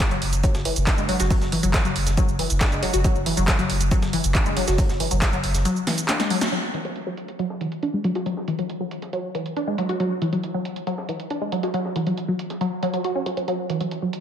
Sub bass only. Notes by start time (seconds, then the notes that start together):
0.11 F#1
0.22 F#1
0.33 F#1
0.54 F#1
0.76 F#1
0.98 F#1
1.20 F#1
1.41 F#1
1.63 F#1
1.85 F#1
1.96 F#1
2.07 F#1
2.29 F#1
2.50 F#1
2.72 F#1
2.94 F#1
3.15 F#1
3.37 F#1
3.59 F#1
3.70 F#1
3.81 F#1
4.02 F#1
4.24 F#1
4.46 F#1
4.67 F#1
4.89 F#1
5.11 F#1
5.33 F#1
5.44 F#1
5.54 F#1